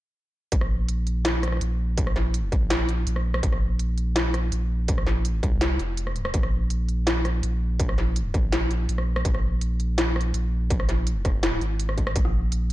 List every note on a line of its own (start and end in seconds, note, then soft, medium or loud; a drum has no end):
0.52 1.60 A#1 medium
0.52 kick loud
0.52 closed hi-hat medium
0.61 cross-stick medium
0.89 closed hi-hat medium
1.07 closed hi-hat soft
1.25 snare loud
1.25 closed hi-hat medium
1.43 cross-stick medium
1.43 closed hi-hat soft
1.48 cross-stick soft
1.52 cross-stick soft
1.57 cross-stick soft
1.61 2.14 A#1 medium
1.61 closed hi-hat medium
1.98 kick loud
1.98 closed hi-hat medium
2.07 cross-stick medium
2.16 2.51 A#1 medium
2.16 snare soft
2.34 closed hi-hat medium
2.52 3.05 A#1 medium
2.52 kick loud
2.52 closed hi-hat soft
2.70 snare loud
2.70 closed hi-hat medium
2.89 closed hi-hat soft
3.07 3.42 A#1 medium
3.07 closed hi-hat medium
3.16 cross-stick soft
3.34 cross-stick medium
3.43 4.51 A#1 loud
3.43 kick loud
3.43 closed hi-hat medium
3.53 cross-stick medium
3.79 closed hi-hat medium
3.98 closed hi-hat soft
4.16 snare loud
4.16 closed hi-hat medium
4.34 cross-stick medium
4.34 closed hi-hat soft
4.52 5.05 A#1 medium
4.52 closed hi-hat medium
4.88 kick loud
4.88 closed hi-hat medium
4.98 cross-stick medium
5.07 5.42 A#1 medium
5.07 snare soft
5.25 closed hi-hat medium
5.43 5.78 C2 medium
5.43 kick loud
5.43 closed hi-hat soft
5.61 snare loud
5.61 closed hi-hat medium
5.79 6.33 F1 medium
5.79 closed hi-hat soft
5.97 closed hi-hat medium
6.07 cross-stick soft
6.16 closed hi-hat soft
6.25 cross-stick medium
6.34 7.42 A#1 loud
6.34 kick loud
6.34 closed hi-hat medium
6.43 cross-stick medium
6.70 closed hi-hat medium
6.89 closed hi-hat soft
7.07 snare loud
7.07 closed hi-hat medium
7.25 cross-stick medium
7.25 closed hi-hat soft
7.43 7.96 A#1 loud
7.43 closed hi-hat medium
7.80 kick loud
7.80 closed hi-hat medium
7.89 cross-stick medium
7.98 8.33 A#1 loud
7.98 snare soft
8.16 closed hi-hat medium
8.34 8.87 A#1 medium
8.34 kick medium
8.34 closed hi-hat soft
8.52 snare loud
8.52 closed hi-hat medium
8.71 closed hi-hat soft
8.89 9.24 A#1 medium
8.89 closed hi-hat medium
8.98 cross-stick soft
9.16 cross-stick medium
9.25 10.33 A#1 loud
9.25 kick loud
9.25 closed hi-hat medium
9.35 cross-stick medium
9.61 closed hi-hat medium
9.80 closed hi-hat soft
9.98 snare loud
9.98 closed hi-hat medium
10.16 cross-stick medium
10.21 closed hi-hat soft
10.34 10.87 A#1 medium
10.34 closed hi-hat medium
10.70 kick loud
10.70 closed hi-hat medium
10.80 cross-stick medium
10.89 11.24 A#1 medium
10.89 snare soft
10.89 closed hi-hat soft
11.07 closed hi-hat medium
11.25 11.60 F1 medium
11.25 kick loud
11.25 cross-stick soft
11.25 closed hi-hat soft
11.43 snare loud
11.43 closed hi-hat medium
11.61 12.14 G#1 loud
11.61 closed hi-hat soft
11.80 closed hi-hat medium
11.89 cross-stick medium
11.98 kick medium
11.98 closed hi-hat soft
12.07 cross-stick medium
12.16 12.73 A#1 loud
12.16 kick loud
12.16 closed hi-hat medium
12.25 cross-stick medium
12.52 closed hi-hat medium